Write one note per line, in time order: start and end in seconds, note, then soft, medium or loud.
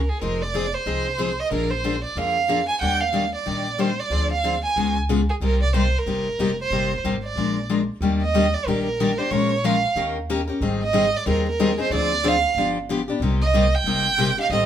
0.00 0.10 A#4 medium
0.09 0.22 G#4 medium
0.21 0.74 F1 medium
0.21 0.41 F3 medium
0.21 0.41 C4 medium
0.21 0.42 D#4 medium
0.21 0.42 G#4 medium
0.21 0.44 A#4 medium
0.42 0.76 D5 medium
0.54 0.65 F3 medium
0.54 0.65 C4 medium
0.54 0.65 D#4 medium
0.54 0.65 G#4 medium
0.75 1.41 C5 medium
0.86 1.38 C2 medium
0.86 1.06 F3 medium
0.86 1.06 C4 medium
0.86 1.06 D#4 medium
0.86 1.06 G#4 medium
1.18 1.29 F3 medium
1.18 1.29 C4 medium
1.18 1.30 D#4 medium
1.18 1.30 G#4 medium
1.40 1.52 D#5 medium
1.51 2.03 A#1 medium
1.51 1.71 D3 medium
1.51 1.71 F3 medium
1.51 1.71 A#3 medium
1.51 1.71 D4 medium
1.51 1.72 G#4 medium
1.51 1.72 A#4 medium
1.71 2.03 C5 medium
1.84 1.95 D3 medium
1.84 1.95 F3 medium
1.84 1.95 A#3 medium
1.84 1.95 D4 medium
1.84 1.95 G#4 medium
2.04 2.19 D5 medium
2.16 2.68 F2 medium
2.16 2.36 D3 medium
2.16 2.36 F3 medium
2.16 2.37 A#3 medium
2.16 2.37 D4 medium
2.16 2.37 G#4 medium
2.16 2.68 F5 medium
2.48 2.59 D3 medium
2.48 2.60 F3 medium
2.48 2.60 A#3 medium
2.48 2.60 D4 medium
2.48 2.60 G#4 medium
2.68 2.77 G#5 medium
2.79 3.33 D#2 medium
2.79 3.01 D#3 soft
2.79 3.01 G3 medium
2.79 3.01 A#3 medium
2.79 3.02 D4 medium
2.79 3.02 G4 medium
2.79 2.84 F#5 medium
2.79 3.02 G5 medium
3.00 3.33 F5 medium
3.13 3.24 D#3 medium
3.13 3.24 G3 medium
3.13 3.24 A#3 medium
3.13 3.24 D4 medium
3.13 3.25 G4 medium
3.35 3.82 D5 medium
3.46 3.98 A#1 medium
3.46 3.66 D#3 medium
3.46 3.66 G3 soft
3.46 3.66 A#3 medium
3.46 3.66 D4 medium
3.46 3.67 G4 medium
3.78 3.89 D#3 medium
3.78 3.90 G3 medium
3.78 3.89 A#3 medium
3.78 3.90 D4 medium
3.78 3.90 G4 medium
3.78 4.01 C5 medium
4.00 4.31 D5 medium
4.10 4.63 D2 medium
4.10 4.31 D3 medium
4.10 4.31 F3 medium
4.10 4.31 C4 medium
4.10 4.31 D4 medium
4.10 4.31 G#4 medium
4.32 4.62 F5 medium
4.44 4.54 D3 medium
4.44 4.54 F3 medium
4.44 4.55 C4 medium
4.44 4.55 D4 medium
4.44 4.55 G#4 medium
4.65 4.94 G#5 medium
4.76 5.28 C#2 medium
4.76 4.96 C#3 medium
4.76 4.96 G#3 medium
4.76 4.97 B3 medium
4.76 4.97 F4 medium
4.76 4.97 G#4 medium
5.09 5.20 C#3 medium
5.09 5.20 G#3 medium
5.09 5.20 B3 medium
5.09 5.20 F4 medium
5.09 5.20 G#4 medium
5.30 5.35 G#4 medium
5.41 5.93 C2 medium
5.41 5.61 C3 medium
5.41 5.62 G3 medium
5.41 5.61 A#3 medium
5.41 5.62 D#4 medium
5.41 5.62 G4 medium
5.41 5.60 A#4 medium
5.63 5.74 D5 medium
5.73 5.84 C3 medium
5.73 5.85 G3 medium
5.73 5.85 A#3 medium
5.73 5.85 D#4 medium
5.73 5.85 G4 medium
5.73 6.00 C5 medium
5.98 6.59 A#4 medium
6.06 6.32 G1 medium
6.06 6.26 C3 medium
6.06 6.27 G3 medium
6.06 6.27 A#3 medium
6.06 6.27 D#4 medium
6.06 6.27 G4 medium
6.39 6.66 F1 medium
6.39 6.50 C3 medium
6.39 6.50 G3 medium
6.39 6.50 A#3 medium
6.39 6.50 D#4 medium
6.39 6.50 G4 medium
6.61 7.02 C5 medium
6.70 6.98 G1 medium
6.70 6.91 C3 medium
6.70 6.91 G3 medium
6.70 6.92 A#3 medium
6.70 6.92 D#4 medium
6.70 6.92 G4 medium
7.04 7.32 G#1 medium
7.04 7.15 C3 medium
7.04 7.15 G3 medium
7.04 7.15 A#3 medium
7.04 7.15 D#4 medium
7.04 7.15 G4 medium
7.25 7.67 D5 medium
7.36 7.88 A#1 medium
7.36 7.57 F3 medium
7.36 7.57 G#3 medium
7.36 7.57 D4 medium
7.36 7.57 F4 medium
7.36 7.57 A#4 medium
7.69 7.80 F3 medium
7.69 7.80 G#3 medium
7.69 7.80 D4 medium
7.69 7.80 F4 medium
7.69 7.81 A#4 medium
8.01 8.53 D#2 medium
8.01 8.22 D#3 medium
8.01 8.21 G3 medium
8.01 8.22 A#3 medium
8.01 8.22 D4 medium
8.01 8.22 G4 medium
8.22 8.55 D#5 medium
8.34 8.45 D#3 medium
8.34 8.45 G3 medium
8.34 8.45 A#3 medium
8.34 8.45 D4 medium
8.34 8.45 G4 medium
8.54 8.68 D5 medium
8.66 9.18 A#1 medium
8.66 8.87 D#3 medium
8.66 8.87 G3 medium
8.66 8.87 A#3 medium
8.66 8.87 D4 medium
8.66 8.87 G4 medium
8.66 8.84 A#4 medium
8.84 9.20 A#4 medium
9.00 9.10 D#3 medium
9.00 9.10 G3 medium
9.00 9.10 A#3 medium
9.00 9.11 D4 medium
9.00 9.11 G4 medium
9.18 9.31 A#3 soft
9.18 9.31 D4 soft
9.18 9.31 G4 soft
9.18 9.32 C5 medium
9.31 9.83 A#1 medium
9.31 9.51 F3 medium
9.31 9.51 G#3 medium
9.31 9.51 C#4 medium
9.31 9.52 F4 medium
9.31 9.52 A#4 medium
9.31 9.67 C#5 medium
9.64 9.75 F3 medium
9.64 9.75 G#3 medium
9.64 9.75 C#4 medium
9.64 9.75 F4 medium
9.64 9.75 A#4 medium
9.64 9.97 F5 medium
9.96 10.48 D#2 medium
9.96 10.16 D#3 medium
9.96 10.16 A#3 medium
9.96 10.17 C#4 medium
9.96 10.16 G4 medium
9.96 10.17 A#4 medium
10.30 10.40 D#3 medium
10.30 10.40 A#3 medium
10.30 10.40 C#4 medium
10.30 10.40 G4 medium
10.30 10.40 A#4 medium
10.47 10.62 C#4 soft
10.47 10.61 G4 soft
10.47 10.61 A#4 medium
10.61 11.13 G#1 medium
10.61 10.81 D#3 medium
10.61 10.81 G3 medium
10.61 10.82 C4 medium
10.61 10.82 D#4 medium
10.61 10.82 G#4 medium
10.83 11.18 D#5 medium
10.93 11.04 D#3 medium
10.93 11.04 G3 medium
10.93 11.05 C4 medium
10.93 11.05 D#4 medium
10.93 11.05 G#4 medium
11.17 11.28 D5 medium
11.26 11.78 D#2 medium
11.26 11.46 D#3 medium
11.26 11.46 G3 medium
11.26 11.46 C4 medium
11.26 11.46 D#4 medium
11.26 11.46 G#4 medium
11.26 11.45 A#4 medium
11.49 11.78 A#4 medium
11.59 11.70 D#3 medium
11.59 11.70 G3 medium
11.59 11.70 C4 medium
11.59 11.70 D#4 medium
11.59 11.70 G#4 medium
11.78 11.91 C4 soft
11.78 11.91 D#4 soft
11.78 11.91 G#4 medium
11.82 11.92 C5 medium
11.90 12.43 D2 medium
11.90 12.11 D3 medium
11.90 12.12 F3 medium
11.90 12.11 C4 medium
11.90 12.12 D4 medium
11.90 12.12 G#4 medium
11.90 12.29 D5 medium
12.23 12.34 D3 medium
12.23 12.34 F3 medium
12.23 12.35 C4 medium
12.23 12.35 D4 medium
12.23 12.35 G#4 medium
12.28 12.58 F5 medium
12.55 13.07 G1 medium
12.55 12.76 D3 medium
12.55 12.77 F3 medium
12.55 12.77 B3 medium
12.55 12.77 D4 medium
12.55 12.77 G4 medium
12.89 13.00 D3 medium
12.89 13.00 F3 medium
12.89 13.00 B3 medium
12.89 13.00 D4 medium
12.89 13.00 G4 medium
13.08 13.22 B3 soft
13.08 13.21 D4 medium
13.08 13.21 G4 soft
13.20 13.72 C2 medium
13.20 13.41 C3 medium
13.20 13.41 G3 medium
13.20 13.41 A#3 medium
13.20 13.42 D#4 medium
13.20 13.42 G4 medium
13.42 13.77 D#5 medium
13.54 13.64 C3 medium
13.54 13.65 G3 medium
13.54 13.65 A#3 medium
13.54 13.65 D#4 medium
13.54 13.65 G4 medium
13.75 14.39 G5 medium
13.84 14.37 G1 medium
13.84 14.06 C3 medium
13.84 14.06 G3 medium
13.84 14.06 A#3 medium
13.84 14.06 D#4 medium
13.84 14.06 G4 medium
14.18 14.29 C3 medium
14.18 14.29 G3 medium
14.18 14.29 A#3 medium
14.18 14.29 D#4 medium
14.18 14.29 G4 loud
14.38 14.51 A#3 soft
14.38 14.51 D#4 soft
14.38 14.50 G4 medium
14.38 14.51 F5 medium
14.50 14.66 A1 medium
14.50 14.66 D#3 medium
14.50 14.66 G3 medium
14.50 14.66 C4 medium
14.50 14.66 G4 medium
14.50 14.66 A4 medium
14.50 14.66 D#5 medium